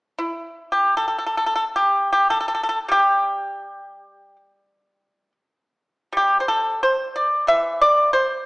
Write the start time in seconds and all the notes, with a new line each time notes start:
0.19 E4
0.72 G4
0.97 A4
1.08 A4
1.18 A4
1.26 A4
1.37 A4
1.46 A4
1.56 A4
1.76 G4
2.13 G4
2.30 A4
2.40 A4
2.48 A4
2.55 A4
2.63 A4
2.69 A4
2.88 G3 G4
6.13 G3
6.17 G4
6.40 C5
6.48 A4
6.83 C5
7.16 D5
7.47 E3 E5
7.82 D5
8.13 C5